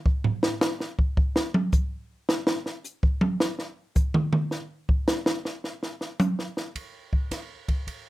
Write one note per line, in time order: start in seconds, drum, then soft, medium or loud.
0.06 kick medium
0.24 floor tom medium
0.43 snare medium
0.61 snare loud
0.61 hi-hat pedal medium
0.80 snare soft
0.99 kick medium
1.17 kick medium
1.36 snare medium
1.54 high tom medium
1.73 kick medium
1.73 hi-hat pedal medium
2.29 snare medium
2.47 snare medium
2.66 snare soft
2.84 hi-hat pedal medium
3.03 kick medium
3.21 high tom medium
3.40 snare medium
3.59 snare soft
3.95 kick medium
3.95 hi-hat pedal medium
4.14 mid tom medium
4.33 mid tom medium
4.51 snare soft
4.89 kick medium
5.08 snare loud
5.08 hi-hat pedal medium
5.26 snare medium
5.45 snare soft
5.64 snare soft
5.83 snare soft
6.01 snare soft
6.19 hi-hat pedal medium
6.19 high tom medium
6.39 snare soft
6.57 snare soft
6.75 kick soft
6.75 ride medium
7.13 kick medium
7.31 kick soft
7.31 snare soft
7.31 hi-hat pedal medium
7.31 ride medium
7.68 kick soft
7.68 ride soft
7.87 kick soft
7.87 ride medium